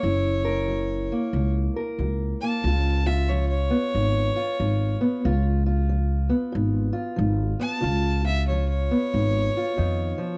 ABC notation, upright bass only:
X:1
M:4/4
L:1/8
Q:"Swing" 1/4=92
K:C#dor
V:1 name="Upright bass" clef=bass
F,,,4 C,, z C,, z | C,,4 G,,, z G,,, z | C,,4 G,,, z G,,, z | C,,4 G,,, z ^E,, z |]